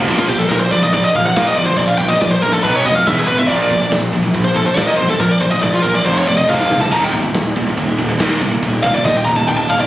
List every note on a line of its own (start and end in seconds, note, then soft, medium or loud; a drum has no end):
0.08 0.23 A#1 medium
0.08 0.28 A#2 loud
0.08 0.28 F3 loud
0.08 0.28 A#3 loud
0.08 kick loud
0.08 crash loud
0.08 crash medium
0.19 0.28 F4 medium
0.28 0.44 A#1 loud
0.28 0.39 A#2 medium
0.28 0.39 F3 medium
0.28 0.39 G4 medium
0.28 kick loud
0.38 0.50 A#2 medium
0.38 0.50 F3 medium
0.38 0.49 A4 medium
0.49 0.66 A#1 medium
0.49 0.70 A#2 medium
0.49 0.70 F3 medium
0.49 0.60 A#4 medium
0.49 kick loud
0.49 snare loud
0.49 crash medium
0.60 0.71 C5 medium
0.71 0.87 A#1 loud
0.71 0.82 A#2 medium
0.71 0.82 F3 medium
0.71 0.83 D5 medium
0.71 kick medium
0.83 0.93 A#2 medium
0.83 0.93 F3 medium
0.83 0.93 D#5 medium
0.93 1.08 A#1 loud
0.93 1.13 A#2 medium
0.93 1.13 F3 medium
0.93 1.04 D5 medium
0.93 kick loud
0.93 crash medium
1.04 1.14 D#5 medium
1.15 1.30 A#1 medium
1.15 1.24 A#2 medium
1.15 1.24 F3 medium
1.15 1.25 F5 loud
1.15 kick medium
1.25 1.35 A#2 medium
1.25 1.36 F3 medium
1.25 1.36 F#5 loud
1.36 1.56 A#2 medium
1.36 1.51 A#2 loud
1.36 1.56 F3 loud
1.36 1.56 A#3 loud
1.36 1.47 F5 medium
1.36 kick loud
1.36 snare loud
1.36 crash medium
1.47 1.57 D#5 medium
1.57 1.72 G1 medium
1.57 1.67 A#2 medium
1.57 1.67 F3 medium
1.57 1.66 D5 loud
1.57 kick medium
1.66 1.77 A#2 medium
1.66 1.77 F3 medium
1.66 1.77 C5 medium
1.77 1.94 A#1 loud
1.77 1.97 A#2 medium
1.77 1.97 F3 medium
1.77 1.88 D5 medium
1.77 kick loud
1.77 crash medium
1.88 1.98 F5 medium
1.98 2.15 A#1 loud
1.98 2.09 A#2 medium
1.98 2.08 F3 medium
1.98 2.09 G5 loud
1.98 kick loud
2.08 2.19 A#2 medium
2.08 2.20 F3 medium
2.08 2.20 D#5 medium
2.20 2.36 A#1 medium
2.20 2.40 A#2 medium
2.20 2.40 F3 medium
2.20 2.31 D5 medium
2.20 kick loud
2.20 snare loud
2.20 crash medium
2.31 2.42 C5 medium
2.42 2.58 A#1 loud
2.42 2.52 A#2 medium
2.42 2.52 F3 medium
2.42 2.53 A#4 loud
2.42 kick medium
2.53 2.64 A#2 medium
2.53 2.64 F3 medium
2.53 2.63 A4 medium
2.64 2.79 B1 loud
2.64 2.84 B2 loud
2.64 2.84 F#3 loud
2.64 2.85 B3 loud
2.64 2.74 B4 medium
2.64 kick loud
2.64 crash medium
2.76 2.86 C#5 medium
2.85 3.00 F1 loud
2.85 2.96 B2 medium
2.85 2.96 F#3 medium
2.85 2.95 D#5 medium
2.85 kick medium
2.95 3.05 B2 medium
2.95 3.06 F#3 medium
2.95 3.08 F5 loud
3.06 3.22 E1 loud
3.06 3.27 E2 loud
3.06 3.27 B2 loud
3.06 3.27 E3 loud
3.06 3.17 E5 medium
3.06 kick loud
3.06 snare loud
3.06 crash medium
3.18 3.27 G#4 medium
3.27 3.43 A1 medium
3.27 3.37 E2 medium
3.27 3.37 B2 medium
3.27 3.38 B4 medium
3.27 kick medium
3.38 3.48 E2 medium
3.38 3.49 B2 loud
3.38 3.47 E5 loud
3.48 3.65 A#1 loud
3.48 3.69 A#2 loud
3.48 3.69 F3 loud
3.48 3.69 A#3 loud
3.48 3.88 D5 medium
3.48 kick loud
3.48 crash medium
3.70 3.85 A#1 loud
3.70 3.79 A#2 medium
3.70 3.78 F3 medium
3.70 kick loud
3.80 3.90 A#2 medium
3.80 3.90 F3 medium
3.91 4.07 A#1 medium
3.91 4.11 A#2 medium
3.91 4.11 F3 medium
3.91 kick loud
3.91 snare loud
3.91 crash medium
4.12 4.28 A#1 loud
4.12 4.23 A#2 medium
4.12 4.22 F3 loud
4.12 kick loud
4.24 4.32 A#2 medium
4.24 4.33 F3 medium
4.33 4.49 A#1 loud
4.33 4.53 A#2 medium
4.33 4.54 F3 medium
4.33 kick loud
4.33 crash medium
4.45 4.55 C5 medium
4.55 4.71 A#1 loud
4.55 4.65 A#2 medium
4.55 4.65 F3 medium
4.55 4.66 A4 medium
4.55 kick medium
4.66 4.76 A#2 medium
4.66 4.76 F3 medium
4.66 4.77 C5 loud
4.77 4.97 A#2 loud
4.77 4.92 A#2 medium
4.77 4.98 F3 loud
4.77 4.98 A#3 loud
4.77 4.87 D5 medium
4.77 kick loud
4.77 snare loud
4.77 crash medium
4.87 4.97 D#5 loud
4.97 5.14 G1 medium
4.97 5.08 A#2 medium
4.97 5.07 F3 medium
4.97 5.08 C5 loud
4.97 kick medium
5.09 5.19 A#2 medium
5.09 5.20 F3 loud
5.09 5.20 A4 medium
5.20 5.35 A#1 loud
5.20 5.40 A#2 medium
5.20 5.40 F3 medium
5.20 5.31 A#4 medium
5.20 kick loud
5.20 crash medium
5.31 5.41 D5 loud
5.41 5.56 A#1 loud
5.41 5.53 A#2 medium
5.41 5.52 F3 medium
5.41 5.50 C5 medium
5.41 kick medium
5.50 5.62 A#2 medium
5.50 5.62 F3 medium
5.50 5.62 D#5 loud
5.62 5.78 A#1 loud
5.62 5.82 A#2 medium
5.62 5.82 F3 medium
5.62 5.73 D5 medium
5.62 kick loud
5.62 snare loud
5.62 crash medium
5.74 5.84 F4 medium
5.82 5.99 A#1 medium
5.82 5.95 A#2 medium
5.82 5.94 F3 medium
5.82 5.94 A#4 medium
5.82 kick medium
5.95 6.05 A#2 medium
5.95 6.05 F3 medium
5.95 6.05 D5 loud
6.05 6.21 F1 loud
6.05 6.26 F2 loud
6.05 6.26 C3 medium
6.05 6.26 F3 loud
6.05 6.16 C5 medium
6.05 kick loud
6.05 crash medium
6.18 6.28 C#5 medium
6.27 6.42 F1 loud
6.27 6.36 F2 medium
6.27 6.36 C3 medium
6.27 6.37 D5 loud
6.27 kick loud
6.37 6.46 F2 medium
6.37 6.47 C3 medium
6.37 6.48 D#5 loud
6.47 6.64 F1 loud
6.47 6.68 F2 loud
6.47 6.68 C3 loud
6.47 6.69 F3 loud
6.47 6.79 F5 medium
6.47 kick loud
6.47 snare medium
6.61 snare medium
6.69 6.85 D#1 medium
6.69 6.79 F2 medium
6.69 6.79 C3 medium
6.69 snare loud
6.80 6.90 F2 medium
6.80 6.90 C3 medium
6.80 6.91 A5 medium
6.80 snare loud
6.90 7.07 D#1 medium
6.90 7.11 D#2 medium
6.90 7.11 A#2 medium
6.90 7.12 D#3 loud
6.90 7.04 A#5 loud
6.90 kick loud
6.90 crash medium
7.04 7.10 G5 loud
7.13 7.28 D#1 loud
7.13 7.23 D#2 medium
7.13 7.22 A#2 medium
7.13 kick loud
7.24 7.33 D#2 medium
7.24 7.33 A#2 medium
7.34 7.50 D#1 medium
7.34 7.54 D#2 medium
7.34 7.54 A#2 medium
7.34 kick loud
7.34 snare loud
7.34 crash medium
7.55 7.71 D#1 loud
7.55 7.66 D#2 medium
7.55 7.66 A#2 medium
7.55 kick medium
7.68 7.76 D#2 medium
7.68 7.76 A#2 medium
7.77 7.93 D#1 medium
7.77 7.96 D#2 medium
7.77 7.97 A#2 medium
7.77 kick loud
7.77 crash medium
7.99 8.14 D#1 loud
7.99 8.08 D#2 medium
7.99 8.08 A#2 medium
7.99 kick medium
8.09 8.18 D#2 medium
8.09 8.19 A#2 medium
8.20 8.40 D#2 loud
8.20 8.35 D#2 loud
8.20 8.40 A#2 loud
8.20 8.41 D#3 loud
8.20 kick loud
8.20 snare loud
8.20 crash medium
8.41 8.57 C2 medium
8.41 8.53 D#2 medium
8.41 8.53 A#2 medium
8.41 kick medium
8.54 8.62 D#2 medium
8.54 8.62 A#2 loud
8.63 8.78 D#1 loud
8.63 8.82 D#2 medium
8.63 8.82 A#2 medium
8.63 kick loud
8.63 crash medium
8.83 8.99 D#1 loud
8.83 8.95 D#2 medium
8.83 8.95 A#2 medium
8.83 8.94 F5 medium
8.83 kick loud
8.95 9.05 D#2 medium
8.95 9.05 A#2 medium
8.95 9.05 D5 medium
9.05 9.21 D#1 medium
9.05 9.25 D#2 medium
9.05 9.25 A#2 medium
9.05 9.16 D#5 medium
9.05 kick loud
9.05 snare loud
9.05 crash medium
9.17 9.25 G5 loud
9.25 9.42 D#1 medium
9.25 9.37 D#2 medium
9.25 9.37 A#2 medium
9.25 9.36 A#5 loud
9.25 kick medium
9.36 9.48 D#2 medium
9.36 9.49 A#2 medium
9.36 9.48 A5 medium
9.48 9.64 D#1 medium
9.48 9.68 D#2 medium
9.48 9.69 A#2 loud
9.48 9.57 G5 loud
9.48 kick loud
9.48 crash medium
9.57 9.69 A5 loud
9.70 9.85 D#1 medium
9.70 9.79 D#2 medium
9.70 9.79 A#2 medium
9.70 9.80 F5 loud
9.70 kick medium
9.81 9.87 D#2 medium
9.81 9.87 A#2 medium
9.81 9.87 D5 medium